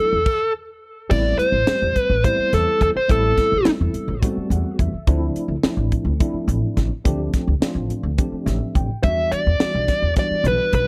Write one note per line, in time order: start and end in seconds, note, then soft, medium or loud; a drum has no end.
0.00 0.17 F#3 soft
0.00 0.17 A3 medium
0.00 0.17 B3 soft
0.00 0.18 D4 medium
0.00 0.18 E4 medium
0.00 0.52 A4 medium
0.13 0.24 E2 medium
0.26 kick loud
0.26 crash medium
1.10 1.35 A1 medium
1.10 1.58 G3 medium
1.10 1.58 A3 medium
1.10 1.58 B3 medium
1.10 1.58 C4 medium
1.10 1.58 E4 medium
1.10 1.38 D5 medium
1.10 kick medium
1.10 crash medium
1.39 1.99 C5 medium
1.39 muted upright bass stroke soft
1.39 closed hi-hat medium
1.52 1.65 A1 medium
1.67 2.15 G3 medium
1.67 2.15 A3 soft
1.67 2.15 C4 medium
1.67 2.15 G4 medium
1.67 muted upright bass stroke soft
1.67 snare loud
1.67 closed hi-hat medium
1.82 1.94 E2 medium
1.96 2.24 B4 medium
1.96 muted upright bass stroke soft
1.96 kick medium
1.96 closed hi-hat medium
2.10 2.22 A1 medium
2.24 2.96 G3 medium
2.24 2.96 A3 medium
2.24 2.96 B3 medium
2.24 2.96 C4 medium
2.24 2.96 E4 medium
2.24 2.51 C5 medium
2.24 kick medium
2.24 closed hi-hat medium
2.39 muted upright bass stroke soft
2.53 2.65 E2 medium
2.53 2.81 A4 medium
2.53 snare soft
2.53 closed hi-hat medium
2.81 2.93 E2 medium
2.81 2.87 A4 medium
2.81 kick medium
2.81 closed hi-hat soft
2.95 3.10 C5 medium
2.95 muted upright bass stroke soft
3.08 3.34 A1 medium
3.08 3.56 G3 medium
3.08 3.56 A3 medium
3.08 3.56 B3 medium
3.08 3.56 C4 medium
3.08 3.57 E4 medium
3.08 3.70 A4 medium
3.08 kick medium
3.08 closed hi-hat medium
3.37 muted upright bass stroke soft
3.37 kick medium
3.37 snare soft
3.37 closed hi-hat medium
3.52 3.64 A1 medium
3.65 4.13 G3 medium
3.65 4.13 A3 medium
3.65 4.14 B3 medium
3.65 4.13 C4 medium
3.65 4.14 E4 medium
3.65 muted upright bass stroke soft
3.65 snare loud
3.65 closed hi-hat medium
3.81 3.93 E2 medium
3.94 muted upright bass stroke soft
3.94 closed hi-hat medium
4.08 4.20 A1 medium
4.22 4.93 G3 medium
4.22 4.93 A3 medium
4.22 4.94 B3 medium
4.22 4.94 C4 medium
4.22 4.94 F#4 medium
4.22 kick loud
4.22 closed hi-hat medium
4.37 muted upright bass stroke soft
4.50 4.63 E2 medium
4.50 4.78 F#5 medium
4.50 closed hi-hat medium
4.79 4.91 E2 medium
4.79 5.06 E5 medium
4.79 kick medium
4.79 closed hi-hat medium
4.94 muted upright bass stroke soft
5.07 5.31 D2 medium
5.07 5.55 F3 medium
5.07 5.55 A3 medium
5.07 5.55 C4 medium
5.07 5.55 D4 medium
5.07 5.55 E4 loud
5.07 kick loud
5.07 closed hi-hat medium
5.35 muted upright bass stroke soft
5.35 closed hi-hat medium
5.48 5.61 D2 medium
5.63 6.11 F3 medium
5.63 6.11 A3 medium
5.63 6.11 C4 medium
5.63 6.12 D4 medium
5.63 6.12 E4 medium
5.63 muted upright bass stroke soft
5.63 snare medium
5.63 closed hi-hat medium
5.77 5.90 A1 medium
5.92 muted upright bass stroke soft
5.92 kick medium
5.92 closed hi-hat medium
6.05 6.17 D2 medium
6.20 6.91 F3 medium
6.20 6.91 A3 medium
6.20 6.91 C4 medium
6.20 6.92 D4 medium
6.20 6.92 E4 medium
6.20 kick loud
6.20 closed hi-hat medium
6.33 muted upright bass stroke soft
6.48 6.60 A1 loud
6.48 closed hi-hat medium
6.77 6.89 A1 medium
6.77 kick medium
6.77 snare soft
6.77 closed hi-hat medium
6.89 muted upright bass stroke soft
7.04 7.29 D2 medium
7.04 7.52 F3 medium
7.04 7.53 A3 medium
7.04 7.53 C4 medium
7.04 7.53 D4 medium
7.04 7.53 G4 medium
7.04 kick loud
7.04 closed hi-hat medium
7.33 muted upright bass stroke soft
7.33 kick medium
7.33 snare soft
7.33 closed hi-hat medium
7.47 7.60 D2 medium
7.60 8.09 F3 medium
7.60 8.09 A3 medium
7.60 8.09 C4 medium
7.60 8.10 D4 medium
7.60 8.09 F4 medium
7.60 muted upright bass stroke soft
7.60 snare loud
7.60 closed hi-hat medium
7.75 7.88 A1 medium
7.89 muted upright bass stroke soft
7.89 closed hi-hat medium
8.03 8.16 D2 medium
8.18 8.89 F3 medium
8.18 8.89 A3 medium
8.18 8.89 C4 medium
8.18 8.89 D4 medium
8.18 8.89 G4 medium
8.18 kick loud
8.18 closed hi-hat medium
8.32 muted upright bass stroke soft
8.46 8.59 A1 loud
8.46 8.73 E5 medium
8.46 snare soft
8.46 closed hi-hat medium
8.75 8.87 A1 medium
8.75 9.02 G5 medium
8.75 kick medium
8.75 closed hi-hat soft
8.88 muted upright bass stroke soft
9.03 9.28 E2 medium
9.03 9.51 E3 medium
9.03 9.51 G3 medium
9.03 9.51 B3 medium
9.03 9.51 D4 medium
9.03 9.51 F#4 medium
9.03 9.33 E5 loud
9.03 kick loud
9.03 closed hi-hat medium
9.32 10.13 D5 medium
9.32 muted upright bass stroke soft
9.32 closed hi-hat medium
9.47 9.58 E2 medium
9.60 10.08 E3 medium
9.60 10.08 G3 medium
9.60 10.08 B3 medium
9.60 10.08 D4 medium
9.60 10.08 F#4 medium
9.60 muted upright bass stroke soft
9.60 snare loud
9.60 closed hi-hat medium
9.74 9.87 B1 medium
9.88 muted upright bass stroke soft
9.88 kick medium
9.88 snare soft
9.88 closed hi-hat medium
10.02 10.15 E2 medium
10.16 10.87 E3 medium
10.16 10.87 G3 medium
10.16 10.87 B3 medium
10.16 10.87 D4 medium
10.16 10.87 F#4 medium
10.16 10.47 D5 loud
10.16 kick loud
10.16 snare soft
10.16 closed hi-hat medium
10.31 muted upright bass stroke soft
10.44 10.57 B1 loud
10.44 10.74 B4 medium
10.44 closed hi-hat medium
10.73 10.85 B1 medium
10.73 10.87 B4 medium
10.73 kick medium
10.73 closed hi-hat soft